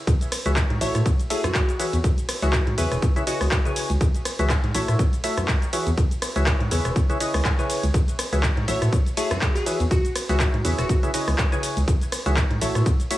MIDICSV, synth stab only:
0, 0, Header, 1, 2, 480
1, 0, Start_track
1, 0, Key_signature, 4, "major"
1, 0, Tempo, 491803
1, 71, Time_signature, 4, 2, 24, 8
1, 12863, End_track
2, 0, Start_track
2, 0, Title_t, "Synth stab"
2, 0, Program_c, 0, 62
2, 446, Note_on_c, 0, 52, 87
2, 446, Note_on_c, 0, 66, 83
2, 446, Note_on_c, 0, 68, 75
2, 446, Note_on_c, 0, 71, 80
2, 446, Note_on_c, 0, 73, 77
2, 446, Note_on_c, 0, 76, 94
2, 598, Note_off_c, 0, 52, 0
2, 598, Note_off_c, 0, 66, 0
2, 598, Note_off_c, 0, 68, 0
2, 598, Note_off_c, 0, 71, 0
2, 598, Note_off_c, 0, 73, 0
2, 598, Note_off_c, 0, 76, 0
2, 791, Note_on_c, 0, 69, 86
2, 791, Note_on_c, 0, 73, 86
2, 792, Note_on_c, 0, 57, 90
2, 792, Note_on_c, 0, 64, 86
2, 792, Note_on_c, 0, 66, 86
2, 792, Note_on_c, 0, 76, 104
2, 1052, Note_off_c, 0, 57, 0
2, 1052, Note_off_c, 0, 64, 0
2, 1052, Note_off_c, 0, 66, 0
2, 1052, Note_off_c, 0, 69, 0
2, 1052, Note_off_c, 0, 73, 0
2, 1052, Note_off_c, 0, 76, 0
2, 1272, Note_on_c, 0, 57, 91
2, 1272, Note_on_c, 0, 64, 83
2, 1272, Note_on_c, 0, 66, 86
2, 1272, Note_on_c, 0, 69, 83
2, 1272, Note_on_c, 0, 73, 85
2, 1272, Note_on_c, 0, 76, 104
2, 1532, Note_off_c, 0, 57, 0
2, 1532, Note_off_c, 0, 64, 0
2, 1532, Note_off_c, 0, 66, 0
2, 1532, Note_off_c, 0, 69, 0
2, 1532, Note_off_c, 0, 73, 0
2, 1532, Note_off_c, 0, 76, 0
2, 1752, Note_on_c, 0, 52, 91
2, 1752, Note_on_c, 0, 66, 79
2, 1752, Note_on_c, 0, 68, 83
2, 1752, Note_on_c, 0, 71, 81
2, 1752, Note_on_c, 0, 73, 86
2, 1752, Note_on_c, 0, 76, 98
2, 1922, Note_off_c, 0, 52, 0
2, 1922, Note_off_c, 0, 66, 0
2, 1922, Note_off_c, 0, 68, 0
2, 1922, Note_off_c, 0, 71, 0
2, 1922, Note_off_c, 0, 73, 0
2, 1922, Note_off_c, 0, 76, 0
2, 2366, Note_on_c, 0, 52, 85
2, 2366, Note_on_c, 0, 66, 78
2, 2366, Note_on_c, 0, 68, 82
2, 2366, Note_on_c, 0, 71, 83
2, 2366, Note_on_c, 0, 73, 81
2, 2366, Note_on_c, 0, 76, 96
2, 2622, Note_off_c, 0, 52, 0
2, 2622, Note_off_c, 0, 66, 0
2, 2622, Note_off_c, 0, 68, 0
2, 2622, Note_off_c, 0, 71, 0
2, 2622, Note_off_c, 0, 73, 0
2, 2622, Note_off_c, 0, 76, 0
2, 2712, Note_on_c, 0, 49, 80
2, 2712, Note_on_c, 0, 64, 71
2, 2712, Note_on_c, 0, 68, 68
2, 2712, Note_on_c, 0, 71, 67
2, 2712, Note_on_c, 0, 73, 72
2, 2712, Note_on_c, 0, 76, 80
2, 3054, Note_off_c, 0, 49, 0
2, 3054, Note_off_c, 0, 64, 0
2, 3054, Note_off_c, 0, 68, 0
2, 3054, Note_off_c, 0, 71, 0
2, 3054, Note_off_c, 0, 73, 0
2, 3054, Note_off_c, 0, 76, 0
2, 3086, Note_on_c, 0, 49, 102
2, 3086, Note_on_c, 0, 64, 90
2, 3086, Note_on_c, 0, 68, 89
2, 3086, Note_on_c, 0, 71, 85
2, 3086, Note_on_c, 0, 73, 89
2, 3086, Note_on_c, 0, 76, 103
2, 3166, Note_off_c, 0, 49, 0
2, 3166, Note_off_c, 0, 64, 0
2, 3166, Note_off_c, 0, 68, 0
2, 3166, Note_off_c, 0, 71, 0
2, 3166, Note_off_c, 0, 73, 0
2, 3166, Note_off_c, 0, 76, 0
2, 3192, Note_on_c, 0, 49, 90
2, 3192, Note_on_c, 0, 64, 82
2, 3192, Note_on_c, 0, 68, 76
2, 3192, Note_on_c, 0, 71, 81
2, 3192, Note_on_c, 0, 73, 82
2, 3192, Note_on_c, 0, 75, 97
2, 3534, Note_off_c, 0, 49, 0
2, 3534, Note_off_c, 0, 64, 0
2, 3534, Note_off_c, 0, 68, 0
2, 3534, Note_off_c, 0, 71, 0
2, 3534, Note_off_c, 0, 73, 0
2, 3534, Note_off_c, 0, 75, 0
2, 3566, Note_on_c, 0, 49, 100
2, 3566, Note_on_c, 0, 64, 90
2, 3566, Note_on_c, 0, 68, 91
2, 3566, Note_on_c, 0, 71, 86
2, 3566, Note_on_c, 0, 73, 88
2, 3566, Note_on_c, 0, 80, 101
2, 3822, Note_off_c, 0, 49, 0
2, 3822, Note_off_c, 0, 64, 0
2, 3822, Note_off_c, 0, 68, 0
2, 3822, Note_off_c, 0, 71, 0
2, 3822, Note_off_c, 0, 73, 0
2, 3822, Note_off_c, 0, 80, 0
2, 4286, Note_on_c, 0, 52, 87
2, 4286, Note_on_c, 0, 66, 78
2, 4286, Note_on_c, 0, 68, 80
2, 4286, Note_on_c, 0, 71, 80
2, 4286, Note_on_c, 0, 73, 79
2, 4286, Note_on_c, 0, 76, 92
2, 4438, Note_off_c, 0, 52, 0
2, 4438, Note_off_c, 0, 66, 0
2, 4438, Note_off_c, 0, 68, 0
2, 4438, Note_off_c, 0, 71, 0
2, 4438, Note_off_c, 0, 73, 0
2, 4438, Note_off_c, 0, 76, 0
2, 4632, Note_on_c, 0, 57, 93
2, 4632, Note_on_c, 0, 64, 86
2, 4632, Note_on_c, 0, 66, 88
2, 4632, Note_on_c, 0, 69, 86
2, 4632, Note_on_c, 0, 73, 84
2, 4632, Note_on_c, 0, 76, 104
2, 4892, Note_off_c, 0, 57, 0
2, 4892, Note_off_c, 0, 64, 0
2, 4892, Note_off_c, 0, 66, 0
2, 4892, Note_off_c, 0, 69, 0
2, 4892, Note_off_c, 0, 73, 0
2, 4892, Note_off_c, 0, 76, 0
2, 5112, Note_on_c, 0, 57, 91
2, 5112, Note_on_c, 0, 64, 84
2, 5112, Note_on_c, 0, 66, 85
2, 5112, Note_on_c, 0, 69, 85
2, 5112, Note_on_c, 0, 73, 88
2, 5112, Note_on_c, 0, 76, 105
2, 5372, Note_off_c, 0, 57, 0
2, 5372, Note_off_c, 0, 64, 0
2, 5372, Note_off_c, 0, 66, 0
2, 5372, Note_off_c, 0, 69, 0
2, 5372, Note_off_c, 0, 73, 0
2, 5372, Note_off_c, 0, 76, 0
2, 5592, Note_on_c, 0, 52, 88
2, 5592, Note_on_c, 0, 66, 79
2, 5592, Note_on_c, 0, 68, 82
2, 5592, Note_on_c, 0, 71, 81
2, 5592, Note_on_c, 0, 73, 85
2, 5592, Note_on_c, 0, 76, 101
2, 5763, Note_off_c, 0, 52, 0
2, 5763, Note_off_c, 0, 66, 0
2, 5763, Note_off_c, 0, 68, 0
2, 5763, Note_off_c, 0, 71, 0
2, 5763, Note_off_c, 0, 73, 0
2, 5763, Note_off_c, 0, 76, 0
2, 6206, Note_on_c, 0, 52, 84
2, 6206, Note_on_c, 0, 66, 78
2, 6206, Note_on_c, 0, 68, 77
2, 6206, Note_on_c, 0, 71, 75
2, 6206, Note_on_c, 0, 73, 74
2, 6206, Note_on_c, 0, 76, 95
2, 6462, Note_off_c, 0, 52, 0
2, 6462, Note_off_c, 0, 66, 0
2, 6462, Note_off_c, 0, 68, 0
2, 6462, Note_off_c, 0, 71, 0
2, 6462, Note_off_c, 0, 73, 0
2, 6462, Note_off_c, 0, 76, 0
2, 6552, Note_on_c, 0, 49, 78
2, 6552, Note_on_c, 0, 64, 70
2, 6552, Note_on_c, 0, 68, 67
2, 6552, Note_on_c, 0, 71, 68
2, 6552, Note_on_c, 0, 73, 68
2, 6552, Note_on_c, 0, 76, 85
2, 6894, Note_off_c, 0, 49, 0
2, 6894, Note_off_c, 0, 64, 0
2, 6894, Note_off_c, 0, 68, 0
2, 6894, Note_off_c, 0, 71, 0
2, 6894, Note_off_c, 0, 73, 0
2, 6894, Note_off_c, 0, 76, 0
2, 6926, Note_on_c, 0, 49, 93
2, 6926, Note_on_c, 0, 64, 92
2, 6926, Note_on_c, 0, 68, 84
2, 6926, Note_on_c, 0, 71, 89
2, 6926, Note_on_c, 0, 73, 92
2, 6926, Note_on_c, 0, 76, 108
2, 7006, Note_off_c, 0, 49, 0
2, 7006, Note_off_c, 0, 64, 0
2, 7006, Note_off_c, 0, 68, 0
2, 7006, Note_off_c, 0, 73, 0
2, 7006, Note_off_c, 0, 76, 0
2, 7007, Note_off_c, 0, 71, 0
2, 7032, Note_on_c, 0, 49, 83
2, 7032, Note_on_c, 0, 64, 81
2, 7032, Note_on_c, 0, 68, 77
2, 7032, Note_on_c, 0, 71, 80
2, 7032, Note_on_c, 0, 73, 79
2, 7032, Note_on_c, 0, 75, 93
2, 7374, Note_off_c, 0, 49, 0
2, 7374, Note_off_c, 0, 64, 0
2, 7374, Note_off_c, 0, 68, 0
2, 7374, Note_off_c, 0, 71, 0
2, 7374, Note_off_c, 0, 73, 0
2, 7374, Note_off_c, 0, 75, 0
2, 7406, Note_on_c, 0, 49, 91
2, 7406, Note_on_c, 0, 64, 88
2, 7406, Note_on_c, 0, 68, 84
2, 7406, Note_on_c, 0, 71, 90
2, 7406, Note_on_c, 0, 73, 86
2, 7406, Note_on_c, 0, 80, 102
2, 7662, Note_off_c, 0, 49, 0
2, 7662, Note_off_c, 0, 64, 0
2, 7662, Note_off_c, 0, 68, 0
2, 7662, Note_off_c, 0, 71, 0
2, 7662, Note_off_c, 0, 73, 0
2, 7662, Note_off_c, 0, 80, 0
2, 8125, Note_on_c, 0, 71, 82
2, 8125, Note_on_c, 0, 73, 80
2, 8125, Note_on_c, 0, 76, 97
2, 8126, Note_on_c, 0, 52, 86
2, 8126, Note_on_c, 0, 66, 77
2, 8126, Note_on_c, 0, 68, 77
2, 8278, Note_off_c, 0, 52, 0
2, 8278, Note_off_c, 0, 66, 0
2, 8278, Note_off_c, 0, 68, 0
2, 8278, Note_off_c, 0, 71, 0
2, 8278, Note_off_c, 0, 73, 0
2, 8278, Note_off_c, 0, 76, 0
2, 8471, Note_on_c, 0, 57, 91
2, 8471, Note_on_c, 0, 64, 83
2, 8471, Note_on_c, 0, 66, 85
2, 8471, Note_on_c, 0, 69, 81
2, 8471, Note_on_c, 0, 73, 87
2, 8471, Note_on_c, 0, 76, 105
2, 8732, Note_off_c, 0, 57, 0
2, 8732, Note_off_c, 0, 64, 0
2, 8732, Note_off_c, 0, 66, 0
2, 8732, Note_off_c, 0, 69, 0
2, 8732, Note_off_c, 0, 73, 0
2, 8732, Note_off_c, 0, 76, 0
2, 8951, Note_on_c, 0, 57, 91
2, 8951, Note_on_c, 0, 64, 82
2, 8951, Note_on_c, 0, 66, 79
2, 8951, Note_on_c, 0, 69, 86
2, 8951, Note_on_c, 0, 73, 87
2, 8951, Note_on_c, 0, 76, 105
2, 9212, Note_off_c, 0, 57, 0
2, 9212, Note_off_c, 0, 64, 0
2, 9212, Note_off_c, 0, 66, 0
2, 9212, Note_off_c, 0, 69, 0
2, 9212, Note_off_c, 0, 73, 0
2, 9212, Note_off_c, 0, 76, 0
2, 9431, Note_on_c, 0, 66, 78
2, 9431, Note_on_c, 0, 71, 80
2, 9431, Note_on_c, 0, 73, 77
2, 9431, Note_on_c, 0, 76, 98
2, 9432, Note_on_c, 0, 52, 85
2, 9432, Note_on_c, 0, 68, 82
2, 9602, Note_off_c, 0, 52, 0
2, 9602, Note_off_c, 0, 66, 0
2, 9602, Note_off_c, 0, 68, 0
2, 9602, Note_off_c, 0, 71, 0
2, 9602, Note_off_c, 0, 73, 0
2, 9602, Note_off_c, 0, 76, 0
2, 10046, Note_on_c, 0, 52, 83
2, 10046, Note_on_c, 0, 66, 76
2, 10046, Note_on_c, 0, 68, 75
2, 10046, Note_on_c, 0, 71, 78
2, 10046, Note_on_c, 0, 73, 78
2, 10046, Note_on_c, 0, 76, 97
2, 10302, Note_off_c, 0, 52, 0
2, 10302, Note_off_c, 0, 66, 0
2, 10302, Note_off_c, 0, 68, 0
2, 10302, Note_off_c, 0, 71, 0
2, 10302, Note_off_c, 0, 73, 0
2, 10302, Note_off_c, 0, 76, 0
2, 10391, Note_on_c, 0, 49, 75
2, 10391, Note_on_c, 0, 64, 71
2, 10392, Note_on_c, 0, 68, 65
2, 10392, Note_on_c, 0, 71, 69
2, 10392, Note_on_c, 0, 73, 70
2, 10392, Note_on_c, 0, 76, 84
2, 10733, Note_off_c, 0, 49, 0
2, 10733, Note_off_c, 0, 64, 0
2, 10733, Note_off_c, 0, 68, 0
2, 10733, Note_off_c, 0, 76, 0
2, 10734, Note_off_c, 0, 71, 0
2, 10734, Note_off_c, 0, 73, 0
2, 10766, Note_on_c, 0, 49, 94
2, 10766, Note_on_c, 0, 64, 91
2, 10766, Note_on_c, 0, 68, 85
2, 10766, Note_on_c, 0, 71, 92
2, 10766, Note_on_c, 0, 73, 86
2, 10766, Note_on_c, 0, 76, 108
2, 10846, Note_off_c, 0, 49, 0
2, 10846, Note_off_c, 0, 64, 0
2, 10846, Note_off_c, 0, 68, 0
2, 10846, Note_off_c, 0, 71, 0
2, 10846, Note_off_c, 0, 73, 0
2, 10846, Note_off_c, 0, 76, 0
2, 10872, Note_on_c, 0, 49, 88
2, 10872, Note_on_c, 0, 64, 79
2, 10872, Note_on_c, 0, 68, 83
2, 10872, Note_on_c, 0, 71, 77
2, 10872, Note_on_c, 0, 73, 80
2, 10872, Note_on_c, 0, 75, 95
2, 11214, Note_off_c, 0, 49, 0
2, 11214, Note_off_c, 0, 64, 0
2, 11214, Note_off_c, 0, 68, 0
2, 11214, Note_off_c, 0, 71, 0
2, 11214, Note_off_c, 0, 73, 0
2, 11214, Note_off_c, 0, 75, 0
2, 11246, Note_on_c, 0, 49, 97
2, 11246, Note_on_c, 0, 64, 86
2, 11246, Note_on_c, 0, 68, 90
2, 11246, Note_on_c, 0, 71, 89
2, 11246, Note_on_c, 0, 73, 85
2, 11246, Note_on_c, 0, 80, 104
2, 11502, Note_off_c, 0, 49, 0
2, 11502, Note_off_c, 0, 64, 0
2, 11502, Note_off_c, 0, 68, 0
2, 11502, Note_off_c, 0, 71, 0
2, 11502, Note_off_c, 0, 73, 0
2, 11502, Note_off_c, 0, 80, 0
2, 11966, Note_on_c, 0, 52, 90
2, 11966, Note_on_c, 0, 66, 76
2, 11966, Note_on_c, 0, 68, 84
2, 11966, Note_on_c, 0, 71, 80
2, 11966, Note_on_c, 0, 73, 78
2, 11966, Note_on_c, 0, 76, 96
2, 12118, Note_off_c, 0, 52, 0
2, 12118, Note_off_c, 0, 66, 0
2, 12118, Note_off_c, 0, 68, 0
2, 12118, Note_off_c, 0, 71, 0
2, 12118, Note_off_c, 0, 73, 0
2, 12118, Note_off_c, 0, 76, 0
2, 12312, Note_on_c, 0, 57, 93
2, 12312, Note_on_c, 0, 64, 86
2, 12312, Note_on_c, 0, 66, 84
2, 12312, Note_on_c, 0, 69, 84
2, 12312, Note_on_c, 0, 73, 88
2, 12312, Note_on_c, 0, 76, 104
2, 12572, Note_off_c, 0, 57, 0
2, 12572, Note_off_c, 0, 64, 0
2, 12572, Note_off_c, 0, 66, 0
2, 12572, Note_off_c, 0, 69, 0
2, 12572, Note_off_c, 0, 73, 0
2, 12572, Note_off_c, 0, 76, 0
2, 12792, Note_on_c, 0, 57, 93
2, 12792, Note_on_c, 0, 64, 83
2, 12792, Note_on_c, 0, 66, 86
2, 12792, Note_on_c, 0, 69, 80
2, 12792, Note_on_c, 0, 73, 87
2, 12792, Note_on_c, 0, 76, 102
2, 12863, Note_off_c, 0, 57, 0
2, 12863, Note_off_c, 0, 64, 0
2, 12863, Note_off_c, 0, 66, 0
2, 12863, Note_off_c, 0, 69, 0
2, 12863, Note_off_c, 0, 73, 0
2, 12863, Note_off_c, 0, 76, 0
2, 12863, End_track
0, 0, End_of_file